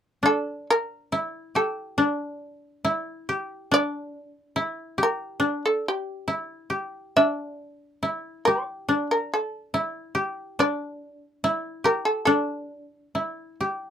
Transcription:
0.23 koto D4, shamisen A4
0.70 shamisen A#4
1.12 koto E4
1.55 koto G4, shamisen A4
1.98 koto D4
2.85 koto E4
3.29 koto G4
3.71 koto D4, shamisen D5
4.56 koto E4
4.98 koto G4
5.03 shamisen A#4
5.40 koto D4
5.66 shamisen A4
5.88 shamisen G4
6.28 koto E4
6.70 koto G4
7.17 koto D4, shamisen E5
8.03 koto E4
8.45 koto G4, shamisen D5
8.89 koto D4
9.11 shamisen A#4
9.34 shamisen A4
9.74 koto E4
10.15 koto G4
10.59 koto D4, shamisen D5
11.44 koto E4
11.84 koto G4, shamisen A#4
12.05 shamisen A4
12.25 koto D4, shamisen A4
13.15 koto E4
13.61 koto G4

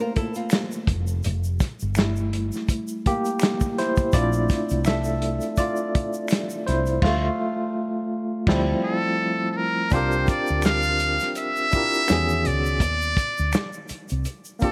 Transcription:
Already playing: tine electric piano A3 A#3 F4
0.00 nylon-string guitar F4 A#4
0.16 nylon-string guitar E4 A4, kick, closed hi-hat
0.34 nylon-string guitar C4 F4, closed hi-hat, shaker
0.50 finger snap, snare, closed hi-hat, shaker
0.72 shaker
0.87 fretless electric bass F1, kick, closed hi-hat
1.07 shaker
1.23 fretless electric bass F1, closed hi-hat, shaker
1.44 shaker
1.60 kick, snare, closed hi-hat, shaker
1.80 fretless electric bass G1, shaker
1.95 tine electric piano G3 A3 E4, finger snap, snare, closed hi-hat, shaker
2.16 shaker
2.33 closed hi-hat
2.52 snare, shaker
2.69 kick, closed hi-hat, shaker
2.88 shaker
3.06 tine electric piano A#3 G4, kick, closed hi-hat
3.25 closed hi-hat, shaker
3.40 finger snap, snare, closed hi-hat, shaker
3.60 kick, shaker
3.78 tine electric piano E4 C5, snare, closed hi-hat
3.96 kick, closed hi-hat, shaker
4.12 fretless electric bass A#1, tine electric piano A3 C4 D4 E4 F4 D5, kick, closed hi-hat, shaker
4.33 shaker
4.49 kick, snare, closed hi-hat, shaker
4.69 fretless electric bass C2, closed hi-hat, shaker
4.85 tine electric piano A4 E5, finger snap, snare, closed hi-hat, shaker
5.04 shaker
5.22 closed hi-hat
5.41 closed hi-hat, shaker
5.57 tine electric piano F4 D5, kick, closed hi-hat, shaker
5.76 shaker
5.95 kick, closed hi-hat
6.13 shaker
6.28 finger snap, closed hi-hat, shaker
6.32 snare
6.50 shaker
6.67 fretless electric bass C2, tine electric piano E4 C5, snare, closed hi-hat
6.86 closed hi-hat, shaker
7.02 fretless electric bass D2, tine electric piano A3 F4, kick, snare, crash
8.47 fretless electric bass D2, tine electric piano F3 G3 C4 E4, kick, snare, crash
8.84 muted trumpet A4
9.51 muted trumpet A4
9.57 muted trumpet A#4
9.91 fretless electric bass C2, tine electric piano C4 D4 F4, muted trumpet C5, kick, closed hi-hat, shaker
9.95 tine electric piano G4 A#4
10.12 shaker
10.27 muted trumpet D5, kick, closed hi-hat, shaker
10.47 fretless electric bass D2, shaker
10.62 muted trumpet F5, finger snap, snare, closed hi-hat, shaker
10.83 shaker
10.99 closed hi-hat, shaker
11.19 snare, closed hi-hat, shaker
11.35 muted trumpet E5, closed hi-hat, shaker
11.56 shaker
11.71 tine electric piano D4 E4 F4 G4, kick, closed hi-hat, shaker
11.76 tine electric piano A#4
11.94 shaker
12.08 fretless electric bass E2, tine electric piano D#3 B3 C#4 F#4, finger snap, snare, closed hi-hat, shaker
12.12 tine electric piano G#4
12.29 shaker
12.45 fretless electric bass C#2, muted trumpet D5, closed hi-hat
12.65 shaker
12.80 fretless electric bass D#2, kick, closed hi-hat, shaker
13.02 shaker
13.17 kick, closed hi-hat, shaker
13.37 fretless electric bass D2, shaker
13.53 finger snap, snare, closed hi-hat, shaker
13.73 shaker
13.89 muted fretless electric bass stroke, closed hi-hat, shaker
14.09 fretless electric bass C2, closed hi-hat, shaker
14.25 closed hi-hat, shaker
14.45 shaker
14.59 tine electric piano A#3 C4 D4, muted trumpet A4, kick, closed hi-hat, shaker
14.63 tine electric piano F4 G4

